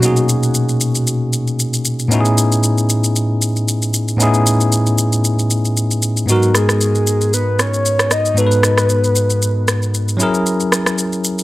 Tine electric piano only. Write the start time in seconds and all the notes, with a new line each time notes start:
0.00 B2 A#3 C#4 D#4
0.04 F#4 G#4
2.08 A2 B3 C#4 D#4
2.13 E4 F#4
2.20 G#4
4.17 A2 B3 C#4 D#4
4.22 E4 G#4
6.26 G#2 B3 D#4
6.30 F#4 A#4
8.34 G#2 B3 D#4
8.39 F#4 A4
8.47 B4
10.17 F#3 C#4 E4
10.22 G#4 A#4